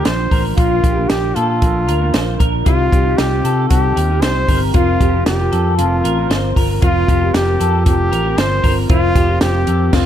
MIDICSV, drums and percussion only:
0, 0, Header, 1, 2, 480
1, 0, Start_track
1, 0, Tempo, 519931
1, 535, Time_signature, 4, 2, 24, 8
1, 9286, End_track
2, 0, Start_track
2, 0, Title_t, "Drums"
2, 48, Note_on_c, 9, 42, 72
2, 51, Note_on_c, 9, 38, 102
2, 140, Note_off_c, 9, 42, 0
2, 143, Note_off_c, 9, 38, 0
2, 290, Note_on_c, 9, 36, 83
2, 294, Note_on_c, 9, 46, 70
2, 383, Note_off_c, 9, 36, 0
2, 386, Note_off_c, 9, 46, 0
2, 532, Note_on_c, 9, 42, 83
2, 533, Note_on_c, 9, 36, 105
2, 625, Note_off_c, 9, 36, 0
2, 625, Note_off_c, 9, 42, 0
2, 773, Note_on_c, 9, 36, 97
2, 775, Note_on_c, 9, 42, 62
2, 865, Note_off_c, 9, 36, 0
2, 868, Note_off_c, 9, 42, 0
2, 1012, Note_on_c, 9, 38, 106
2, 1014, Note_on_c, 9, 42, 88
2, 1104, Note_off_c, 9, 38, 0
2, 1106, Note_off_c, 9, 42, 0
2, 1256, Note_on_c, 9, 42, 71
2, 1349, Note_off_c, 9, 42, 0
2, 1496, Note_on_c, 9, 42, 83
2, 1497, Note_on_c, 9, 36, 88
2, 1588, Note_off_c, 9, 42, 0
2, 1589, Note_off_c, 9, 36, 0
2, 1741, Note_on_c, 9, 42, 73
2, 1833, Note_off_c, 9, 42, 0
2, 1974, Note_on_c, 9, 42, 74
2, 1977, Note_on_c, 9, 38, 96
2, 2066, Note_off_c, 9, 42, 0
2, 2070, Note_off_c, 9, 38, 0
2, 2217, Note_on_c, 9, 36, 82
2, 2219, Note_on_c, 9, 42, 67
2, 2309, Note_off_c, 9, 36, 0
2, 2311, Note_off_c, 9, 42, 0
2, 2457, Note_on_c, 9, 42, 82
2, 2459, Note_on_c, 9, 36, 97
2, 2549, Note_off_c, 9, 42, 0
2, 2551, Note_off_c, 9, 36, 0
2, 2700, Note_on_c, 9, 36, 92
2, 2704, Note_on_c, 9, 42, 59
2, 2792, Note_off_c, 9, 36, 0
2, 2797, Note_off_c, 9, 42, 0
2, 2939, Note_on_c, 9, 38, 107
2, 2941, Note_on_c, 9, 42, 90
2, 3032, Note_off_c, 9, 38, 0
2, 3033, Note_off_c, 9, 42, 0
2, 3184, Note_on_c, 9, 42, 66
2, 3277, Note_off_c, 9, 42, 0
2, 3420, Note_on_c, 9, 42, 91
2, 3422, Note_on_c, 9, 36, 87
2, 3513, Note_off_c, 9, 42, 0
2, 3515, Note_off_c, 9, 36, 0
2, 3666, Note_on_c, 9, 42, 77
2, 3758, Note_off_c, 9, 42, 0
2, 3899, Note_on_c, 9, 42, 77
2, 3902, Note_on_c, 9, 38, 95
2, 3991, Note_off_c, 9, 42, 0
2, 3994, Note_off_c, 9, 38, 0
2, 4140, Note_on_c, 9, 36, 78
2, 4140, Note_on_c, 9, 46, 69
2, 4232, Note_off_c, 9, 36, 0
2, 4233, Note_off_c, 9, 46, 0
2, 4376, Note_on_c, 9, 42, 93
2, 4381, Note_on_c, 9, 36, 109
2, 4468, Note_off_c, 9, 42, 0
2, 4473, Note_off_c, 9, 36, 0
2, 4621, Note_on_c, 9, 36, 97
2, 4623, Note_on_c, 9, 42, 58
2, 4713, Note_off_c, 9, 36, 0
2, 4715, Note_off_c, 9, 42, 0
2, 4859, Note_on_c, 9, 38, 105
2, 4861, Note_on_c, 9, 42, 94
2, 4951, Note_off_c, 9, 38, 0
2, 4953, Note_off_c, 9, 42, 0
2, 5102, Note_on_c, 9, 42, 70
2, 5194, Note_off_c, 9, 42, 0
2, 5342, Note_on_c, 9, 42, 90
2, 5434, Note_off_c, 9, 42, 0
2, 5586, Note_on_c, 9, 42, 80
2, 5679, Note_off_c, 9, 42, 0
2, 5822, Note_on_c, 9, 42, 74
2, 5826, Note_on_c, 9, 38, 96
2, 5915, Note_off_c, 9, 42, 0
2, 5918, Note_off_c, 9, 38, 0
2, 6060, Note_on_c, 9, 36, 83
2, 6064, Note_on_c, 9, 46, 70
2, 6153, Note_off_c, 9, 36, 0
2, 6157, Note_off_c, 9, 46, 0
2, 6299, Note_on_c, 9, 42, 91
2, 6301, Note_on_c, 9, 36, 108
2, 6391, Note_off_c, 9, 42, 0
2, 6393, Note_off_c, 9, 36, 0
2, 6540, Note_on_c, 9, 36, 101
2, 6545, Note_on_c, 9, 42, 60
2, 6632, Note_off_c, 9, 36, 0
2, 6638, Note_off_c, 9, 42, 0
2, 6780, Note_on_c, 9, 38, 112
2, 6782, Note_on_c, 9, 42, 89
2, 6872, Note_off_c, 9, 38, 0
2, 6874, Note_off_c, 9, 42, 0
2, 7022, Note_on_c, 9, 42, 70
2, 7115, Note_off_c, 9, 42, 0
2, 7258, Note_on_c, 9, 42, 87
2, 7260, Note_on_c, 9, 36, 96
2, 7350, Note_off_c, 9, 42, 0
2, 7352, Note_off_c, 9, 36, 0
2, 7503, Note_on_c, 9, 42, 75
2, 7595, Note_off_c, 9, 42, 0
2, 7737, Note_on_c, 9, 42, 77
2, 7740, Note_on_c, 9, 38, 100
2, 7829, Note_off_c, 9, 42, 0
2, 7832, Note_off_c, 9, 38, 0
2, 7974, Note_on_c, 9, 36, 81
2, 7977, Note_on_c, 9, 46, 68
2, 8067, Note_off_c, 9, 36, 0
2, 8070, Note_off_c, 9, 46, 0
2, 8212, Note_on_c, 9, 42, 86
2, 8214, Note_on_c, 9, 36, 109
2, 8305, Note_off_c, 9, 42, 0
2, 8306, Note_off_c, 9, 36, 0
2, 8452, Note_on_c, 9, 36, 101
2, 8453, Note_on_c, 9, 42, 63
2, 8544, Note_off_c, 9, 36, 0
2, 8546, Note_off_c, 9, 42, 0
2, 8687, Note_on_c, 9, 38, 107
2, 8689, Note_on_c, 9, 42, 91
2, 8779, Note_off_c, 9, 38, 0
2, 8781, Note_off_c, 9, 42, 0
2, 8928, Note_on_c, 9, 42, 72
2, 9020, Note_off_c, 9, 42, 0
2, 9166, Note_on_c, 9, 49, 80
2, 9167, Note_on_c, 9, 38, 99
2, 9168, Note_on_c, 9, 36, 112
2, 9258, Note_off_c, 9, 49, 0
2, 9259, Note_off_c, 9, 38, 0
2, 9261, Note_off_c, 9, 36, 0
2, 9286, End_track
0, 0, End_of_file